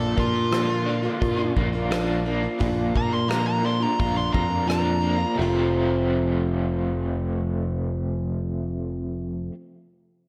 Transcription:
Already playing: A#1 A#2 F3 A#3 D4 F4 A4
0.17 A#2 F3 A#3 D4 F4, kick
0.34 A#3 D4 F4
0.51 A#2 D3 F3 A#3 D4 F4, cross-stick, open hi-hat
0.88 F3 A#3 D4 F4
1.03 A#3 D4 F4
1.21 A#2 F4, kick, open hi-hat
1.37 A#3 D4 F4
1.56 A#1 A#3, kick
1.73 A#3 D4 F4
1.91 A#2 F3 A#3 D4 F4, cross-stick, open hi-hat
2.25 F3 A#3 D4 F4
2.43 A#3 D4 F4
2.59 A#1 A#2 F3 A#3 D4 F4, kick, open hi-hat
2.94 A#2 F3 A#3 D4 A#5, kick
3.12 A#3 D4 F4 C6
3.27 A#2 D3 F3 A#3 D4 F4 A#5, cross-stick, open hi-hat
3.47 A#5
3.63 F3 A#3 D4 F4 C6
3.81 A#3 D4 F4 A#5
4.00 A#1 F4 A#5, kick, open hi-hat
4.15 A#3 D4 F4 C6
4.33 F2 A#3 A#5, kick
4.49 A#3 D4 F4
4.67 A#2 F3 A#3 D4 F4 A#5, cross-stick, open hi-hat
5.00 F3 A#3 D4 F4
5.18 A#3 D4 F4
5.34 F2 C3 F3
5.39 F1 A3 C4 F4

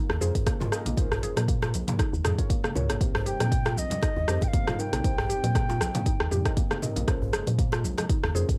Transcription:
Already playing: C#3 G#3 A#3 C#4 F4 A#4 C5
0.10 D#2, cross-stick, djembe tone
0.21 F2 C#4 F4 G#4 A#4 C5, low conga, shaker
0.35 kick, closed hi-hat, djembe bass, shaker
0.46 A#3, kick, cross-stick, closed hi-hat, muted conga, low conga, shaker
0.60 F4, mid tom, djembe slap, high conga, djembe tone, shaker
0.72 C#4 F4 G#4 A#4 D#5, cross-stick, shaker
0.86 A#1 A#3, closed hi-hat, muted conga, low conga, shaker
0.97 A#1 C#4 D#4 F4 G#4 A#4 C5, kick, closed hi-hat, djembe tone, shaker
1.12 cross-stick, djembe bass, shaker
1.23 F1 G#4, closed hi-hat, muted conga, shaker
1.36 A#2, cross-stick, closed hi-hat, high conga, shaker
1.48 A#3, kick, closed hi-hat, shaker
1.62 F4, cross-stick, muted conga, djembe slap, djembe tone, shaker
1.74 A#1, closed hi-hat, high conga, shaker
1.87 A#3, closed hi-hat, mid tom, djembe slap, high conga, low conga, shaker
1.99 D#4, kick, cross-stick, closed hi-hat, shaker
2.13 D#2, shaker
2.24 F2 G#4, cross-stick, closed hi-hat, mid tom, high conga, low conga, shaker
2.38 C#4 F4 G#4 A#4 C#5, kick, closed hi-hat, djembe tone, shaker
2.50 A#3, kick, closed hi-hat, muted conga, shaker
2.64 A#3, cross-stick, low conga, shaker
2.75 C#2 C#4 F4 G#4 A#4 C#5, mid tom, djembe slap, djembe tone, shaker
2.89 G#1 A#3, cross-stick, closed hi-hat, muted conga, low conga, shaker
3.01 A#1 C3 G3 A#3 C4 D#4 G4 A#4 C5, kick, closed hi-hat, djembe tone, shaker
3.15 cross-stick, djembe bass
3.26 F1 G4 G5, closed hi-hat, muted conga, shaker
3.40 A#2, cross-stick, closed hi-hat, high conga, shaker
3.52 A#3, kick, closed hi-hat, shaker
3.65 F4, cross-stick, muted conga, djembe slap, djembe tone, shaker
3.77 A#1 D#5, high conga, shaker
3.90 G3, closed hi-hat, djembe slap, high conga, low conga, shaker
4.02 D#4, kick, cross-stick, closed hi-hat, muted conga, shaker
4.16 D#2, djembe tone
4.28 F2 C4 D#4 G4 A#4 C5, cross-stick, low conga, shaker
4.41 G5, kick, closed hi-hat, djembe bass, shaker
4.48 F5
4.53 A#3, kick, closed hi-hat, muted conga, low conga, shaker
4.67 F4, cross-stick, mid tom, djembe slap, djembe tone, high conga, shaker
4.79 C4 D#4 G4 A#4 F5 G5, shaker
4.93 A#1 A#3, cross-stick, closed hi-hat, muted conga, low conga, shaker
5.04 A#1 C4 D#4 G4 A#4 C5, kick, closed hi-hat, djembe tone, shaker
5.18 cross-stick, djembe bass
5.29 F1 G4, closed hi-hat, muted conga, shaker
5.44 A#2, closed hi-hat, high conga, shaker
5.55 A#3, kick, cross-stick, closed hi-hat, shaker
5.69 F4, djembe slap, muted conga, djembe tone, shaker
5.80 A#1, cross-stick, high conga, shaker
5.94 A#3, closed hi-hat, mid tom, djembe slap, high conga, low conga, shaker
6.06 D#4, kick, closed hi-hat, muted conga, shaker
6.20 D#2, cross-stick
6.31 F2 G4, mid tom, high conga, low conga, shaker
6.45 C4 D#4 G4 A#4 D#5, kick, cross-stick, closed hi-hat, shaker
6.57 A#3, kick, closed hi-hat, muted conga, shaker
6.71 A#3, cross-stick, low conga, shaker
6.82 C4 D#4 G4 A#4 D#5, mid tom, djembe slap, djembe tone, shaker
6.96 A#1 A#3, closed hi-hat, muted conga, low conga, shaker
7.08 A#1 C#3 G#3 A#3 C#4 F4 G#4 A#4 C5, kick, cross-stick, closed hi-hat, djembe tone, shaker
7.22 djembe bass
7.33 F1 G#4, cross-stick, closed hi-hat, muted conga, shaker
7.47 A#2, closed hi-hat, high conga, shaker
7.58 A#3, kick, closed hi-hat, shaker
7.72 F4, cross-stick, djembe slap, muted conga, djembe tone, shaker
7.84 A#1, high conga, shaker
7.98 G#3, cross-stick, closed hi-hat, djembe slap, high conga, low conga, shaker
8.09 D#4, kick, closed hi-hat, muted conga, shaker
8.23 D#2, cross-stick, djembe tone
8.35 F2 C#4 F4 G#4 A#4 C5, low conga, shaker
8.48 kick, closed hi-hat, djembe bass, shaker

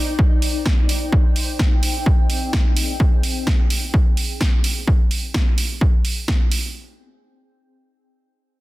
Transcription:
Already playing: D#4
0.05 C5
0.10 G5
0.19 kick
0.42 open hi-hat
0.66 kick, snare
0.89 open hi-hat
1.12 C4, kick
1.36 open hi-hat
1.45 G#4
1.59 kick, snare
1.83 open hi-hat
2.06 kick
2.30 open hi-hat
2.53 kick, snare
2.77 open hi-hat
3.00 kick
3.23 open hi-hat
3.47 kick, snare
3.70 open hi-hat
3.94 kick
4.17 open hi-hat
4.41 kick, snare
4.64 open hi-hat
4.88 kick
5.11 open hi-hat
5.34 kick, snare
5.58 open hi-hat
5.81 kick
6.05 open hi-hat
6.28 kick, snare
6.52 open hi-hat

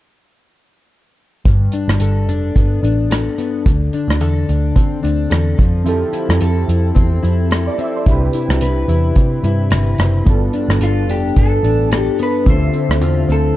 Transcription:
1.45 G1 G2, kick, closed hi-hat
1.72 D4, closed hi-hat
1.88 G1, cross-stick
2.00 G1 A4, closed hi-hat
2.28 F1 D4, closed hi-hat
2.56 G1 B3, kick, closed hi-hat
2.83 A1 D4, closed hi-hat
3.10 A4, cross-stick, closed hi-hat
3.38 B3, closed hi-hat
3.66 D2 D3, kick, closed hi-hat
3.93 D4, closed hi-hat
4.08 D2, cross-stick
4.21 E2 A4, closed hi-hat
4.49 D2 D4, closed hi-hat
4.76 D3 C4, kick, closed hi-hat
5.03 D2 D4, closed hi-hat
5.30 E2 A4, cross-stick, closed hi-hat
5.58 F2 F3, kick, closed hi-hat
5.84 F3 C4 E4 G4, closed hi-hat
5.88 A4
6.13 E4, closed hi-hat
6.29 F2, cross-stick
6.41 F2 A4, closed hi-hat
6.68 F2 E4, closed hi-hat
6.95 E2 C4, kick, closed hi-hat
7.23 F2 E4, closed hi-hat
7.51 A4, cross-stick, closed hi-hat
7.67 D5
7.78 C4 E5, closed hi-hat
7.96 C5
8.05 C2 C3 D4 E4 G4, kick, closed hi-hat
8.11 B4
8.33 E4, closed hi-hat
8.49 C2, cross-stick
8.61 C2 B4, closed hi-hat
8.88 E2 E4, closed hi-hat
9.15 C3 C4, kick, closed hi-hat
9.44 G2 E4, closed hi-hat
9.70 G1 B4, cross-stick, closed hi-hat
9.98 F#1 C4, cross-stick, closed hi-hat
10.25 G1 G2 B3 D4 F4, kick, closed hi-hat
10.30 A4
10.53 D4, closed hi-hat
10.68 G1, cross-stick
10.80 G1 F4 A4, closed hi-hat
11.07 F1 D4 G4, closed hi-hat
11.36 G1 B3 A4, kick, closed hi-hat
11.63 A1 D4, closed hi-hat
11.91 G4 A4, cross-stick, closed hi-hat
12.19 B3 B4, closed hi-hat
12.44 D2 D3 C4 F4 E5, kick, closed hi-hat
12.50 A4 C5
12.74 C4, closed hi-hat
12.89 D2, cross-stick
13.01 E2 F4, closed hi-hat
13.29 D2 C4 A4, closed hi-hat

